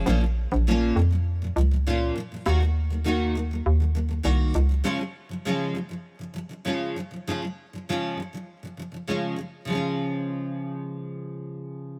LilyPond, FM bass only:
\new Staff \with { instrumentName = "FM bass" } { \clef bass \time 4/4 \key des \major \tempo 4 = 100 bes,,8. bes,,8. f,4 des,4 r8 | ees,2 ees,4 c,8 des,8 | r1 | r1 |
r1 | }